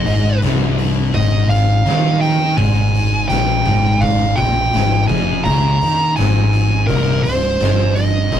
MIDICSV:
0, 0, Header, 1, 5, 480
1, 0, Start_track
1, 0, Tempo, 718563
1, 762, Time_signature, 4, 2, 24, 8
1, 5611, End_track
2, 0, Start_track
2, 0, Title_t, "Lead electric guitar"
2, 0, Program_c, 0, 29
2, 0, Note_on_c, 0, 75, 80
2, 257, Note_off_c, 0, 75, 0
2, 765, Note_on_c, 0, 75, 98
2, 999, Note_off_c, 0, 75, 0
2, 1001, Note_on_c, 0, 77, 92
2, 1456, Note_off_c, 0, 77, 0
2, 1475, Note_on_c, 0, 79, 92
2, 1717, Note_off_c, 0, 79, 0
2, 1720, Note_on_c, 0, 80, 97
2, 2176, Note_off_c, 0, 80, 0
2, 2195, Note_on_c, 0, 79, 94
2, 2676, Note_on_c, 0, 77, 100
2, 2695, Note_off_c, 0, 79, 0
2, 2910, Note_on_c, 0, 79, 102
2, 2928, Note_off_c, 0, 77, 0
2, 3370, Note_off_c, 0, 79, 0
2, 3391, Note_on_c, 0, 80, 101
2, 3620, Note_off_c, 0, 80, 0
2, 3636, Note_on_c, 0, 82, 101
2, 4092, Note_off_c, 0, 82, 0
2, 4116, Note_on_c, 0, 80, 109
2, 4571, Note_off_c, 0, 80, 0
2, 4588, Note_on_c, 0, 70, 96
2, 4829, Note_off_c, 0, 70, 0
2, 4832, Note_on_c, 0, 72, 92
2, 5309, Note_on_c, 0, 75, 95
2, 5329, Note_off_c, 0, 72, 0
2, 5611, Note_off_c, 0, 75, 0
2, 5611, End_track
3, 0, Start_track
3, 0, Title_t, "Distorted electric guitar"
3, 0, Program_c, 1, 30
3, 33, Note_on_c, 1, 44, 96
3, 270, Note_off_c, 1, 44, 0
3, 280, Note_on_c, 1, 36, 104
3, 753, Note_off_c, 1, 36, 0
3, 756, Note_on_c, 1, 44, 102
3, 992, Note_off_c, 1, 44, 0
3, 999, Note_on_c, 1, 44, 75
3, 1193, Note_off_c, 1, 44, 0
3, 1240, Note_on_c, 1, 51, 101
3, 1715, Note_off_c, 1, 51, 0
3, 1719, Note_on_c, 1, 44, 110
3, 2193, Note_off_c, 1, 44, 0
3, 2196, Note_on_c, 1, 46, 110
3, 2433, Note_off_c, 1, 46, 0
3, 2441, Note_on_c, 1, 44, 95
3, 2916, Note_off_c, 1, 44, 0
3, 2922, Note_on_c, 1, 46, 106
3, 3156, Note_off_c, 1, 46, 0
3, 3161, Note_on_c, 1, 44, 73
3, 3354, Note_off_c, 1, 44, 0
3, 3403, Note_on_c, 1, 41, 105
3, 3636, Note_off_c, 1, 41, 0
3, 3642, Note_on_c, 1, 49, 103
3, 3875, Note_off_c, 1, 49, 0
3, 3878, Note_on_c, 1, 51, 100
3, 4113, Note_off_c, 1, 51, 0
3, 4121, Note_on_c, 1, 44, 117
3, 4593, Note_off_c, 1, 44, 0
3, 4599, Note_on_c, 1, 36, 112
3, 4827, Note_off_c, 1, 36, 0
3, 4835, Note_on_c, 1, 36, 75
3, 5029, Note_off_c, 1, 36, 0
3, 5078, Note_on_c, 1, 43, 104
3, 5550, Note_off_c, 1, 43, 0
3, 5555, Note_on_c, 1, 36, 111
3, 5611, Note_off_c, 1, 36, 0
3, 5611, End_track
4, 0, Start_track
4, 0, Title_t, "Fingered electric bass"
4, 0, Program_c, 2, 33
4, 35, Note_on_c, 2, 32, 93
4, 261, Note_off_c, 2, 32, 0
4, 277, Note_on_c, 2, 24, 89
4, 733, Note_off_c, 2, 24, 0
4, 763, Note_on_c, 2, 32, 89
4, 986, Note_off_c, 2, 32, 0
4, 1001, Note_on_c, 2, 32, 77
4, 1225, Note_off_c, 2, 32, 0
4, 1245, Note_on_c, 2, 39, 91
4, 1698, Note_off_c, 2, 39, 0
4, 1722, Note_on_c, 2, 32, 95
4, 2177, Note_off_c, 2, 32, 0
4, 2205, Note_on_c, 2, 34, 93
4, 2428, Note_off_c, 2, 34, 0
4, 2446, Note_on_c, 2, 32, 92
4, 2899, Note_off_c, 2, 32, 0
4, 2924, Note_on_c, 2, 34, 90
4, 3147, Note_off_c, 2, 34, 0
4, 3165, Note_on_c, 2, 32, 79
4, 3387, Note_off_c, 2, 32, 0
4, 3404, Note_on_c, 2, 29, 91
4, 3627, Note_off_c, 2, 29, 0
4, 3644, Note_on_c, 2, 37, 99
4, 3866, Note_off_c, 2, 37, 0
4, 3887, Note_on_c, 2, 39, 97
4, 4108, Note_off_c, 2, 39, 0
4, 4129, Note_on_c, 2, 32, 93
4, 4578, Note_off_c, 2, 32, 0
4, 4603, Note_on_c, 2, 24, 94
4, 4825, Note_off_c, 2, 24, 0
4, 4845, Note_on_c, 2, 24, 77
4, 5066, Note_off_c, 2, 24, 0
4, 5079, Note_on_c, 2, 31, 96
4, 5531, Note_off_c, 2, 31, 0
4, 5560, Note_on_c, 2, 24, 99
4, 5611, Note_off_c, 2, 24, 0
4, 5611, End_track
5, 0, Start_track
5, 0, Title_t, "Drums"
5, 42, Note_on_c, 9, 46, 60
5, 109, Note_off_c, 9, 46, 0
5, 282, Note_on_c, 9, 46, 83
5, 298, Note_on_c, 9, 38, 115
5, 348, Note_off_c, 9, 46, 0
5, 365, Note_off_c, 9, 38, 0
5, 524, Note_on_c, 9, 46, 58
5, 590, Note_off_c, 9, 46, 0
5, 762, Note_on_c, 9, 36, 102
5, 765, Note_on_c, 9, 46, 78
5, 829, Note_off_c, 9, 36, 0
5, 832, Note_off_c, 9, 46, 0
5, 1004, Note_on_c, 9, 46, 58
5, 1020, Note_on_c, 9, 38, 33
5, 1071, Note_off_c, 9, 46, 0
5, 1087, Note_off_c, 9, 38, 0
5, 1244, Note_on_c, 9, 46, 70
5, 1260, Note_on_c, 9, 38, 112
5, 1311, Note_off_c, 9, 46, 0
5, 1327, Note_off_c, 9, 38, 0
5, 1487, Note_on_c, 9, 46, 56
5, 1554, Note_off_c, 9, 46, 0
5, 1722, Note_on_c, 9, 36, 100
5, 1723, Note_on_c, 9, 46, 73
5, 1789, Note_off_c, 9, 36, 0
5, 1789, Note_off_c, 9, 46, 0
5, 1965, Note_on_c, 9, 46, 56
5, 2032, Note_off_c, 9, 46, 0
5, 2202, Note_on_c, 9, 46, 80
5, 2218, Note_on_c, 9, 38, 111
5, 2269, Note_off_c, 9, 46, 0
5, 2285, Note_off_c, 9, 38, 0
5, 2340, Note_on_c, 9, 38, 32
5, 2407, Note_off_c, 9, 38, 0
5, 2443, Note_on_c, 9, 36, 103
5, 2444, Note_on_c, 9, 46, 58
5, 2510, Note_off_c, 9, 36, 0
5, 2511, Note_off_c, 9, 46, 0
5, 2683, Note_on_c, 9, 36, 103
5, 2685, Note_on_c, 9, 46, 74
5, 2750, Note_off_c, 9, 36, 0
5, 2752, Note_off_c, 9, 46, 0
5, 2924, Note_on_c, 9, 36, 103
5, 2924, Note_on_c, 9, 46, 57
5, 2940, Note_on_c, 9, 38, 34
5, 2990, Note_off_c, 9, 36, 0
5, 2991, Note_off_c, 9, 46, 0
5, 3007, Note_off_c, 9, 38, 0
5, 3162, Note_on_c, 9, 46, 79
5, 3178, Note_on_c, 9, 38, 115
5, 3229, Note_off_c, 9, 46, 0
5, 3245, Note_off_c, 9, 38, 0
5, 3402, Note_on_c, 9, 46, 60
5, 3404, Note_on_c, 9, 36, 112
5, 3469, Note_off_c, 9, 46, 0
5, 3470, Note_off_c, 9, 36, 0
5, 3641, Note_on_c, 9, 46, 86
5, 3644, Note_on_c, 9, 36, 106
5, 3708, Note_off_c, 9, 46, 0
5, 3710, Note_off_c, 9, 36, 0
5, 3883, Note_on_c, 9, 46, 62
5, 3949, Note_off_c, 9, 46, 0
5, 4120, Note_on_c, 9, 46, 86
5, 4136, Note_on_c, 9, 38, 118
5, 4186, Note_off_c, 9, 46, 0
5, 4202, Note_off_c, 9, 38, 0
5, 4361, Note_on_c, 9, 46, 59
5, 4428, Note_off_c, 9, 46, 0
5, 4602, Note_on_c, 9, 46, 77
5, 4603, Note_on_c, 9, 36, 97
5, 4669, Note_off_c, 9, 36, 0
5, 4669, Note_off_c, 9, 46, 0
5, 4842, Note_on_c, 9, 46, 61
5, 4858, Note_on_c, 9, 38, 32
5, 4909, Note_off_c, 9, 46, 0
5, 4925, Note_off_c, 9, 38, 0
5, 5080, Note_on_c, 9, 46, 76
5, 5096, Note_on_c, 9, 38, 109
5, 5147, Note_off_c, 9, 46, 0
5, 5163, Note_off_c, 9, 38, 0
5, 5318, Note_on_c, 9, 46, 55
5, 5384, Note_off_c, 9, 46, 0
5, 5558, Note_on_c, 9, 46, 80
5, 5560, Note_on_c, 9, 36, 100
5, 5611, Note_off_c, 9, 36, 0
5, 5611, Note_off_c, 9, 46, 0
5, 5611, End_track
0, 0, End_of_file